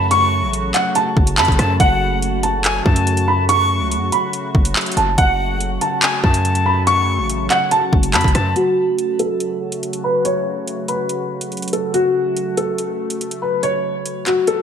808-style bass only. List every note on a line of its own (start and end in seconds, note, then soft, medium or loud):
0.00 0.44 F#2 loud
0.43 0.73 A1 loud
1.17 1.39 F#1 loud
1.38 1.48 F#2 loud
1.48 1.58 F#1 loud
1.59 1.79 F#2 loud
1.80 2.82 F#1 loud
2.86 3.82 F#2 loud
3.81 3.98 C#2 loud
3.97 4.12 F#2 medium
4.55 4.75 F#1 loud
4.97 5.17 F#1 loud
5.18 5.79 F#1 loud
6.24 7.20 F#2 loud
7.19 7.49 A1 loud
7.93 8.15 F#1 loud
8.14 8.24 F#2 loud
8.24 8.34 F#1 loud
8.35 8.55 F#2 loud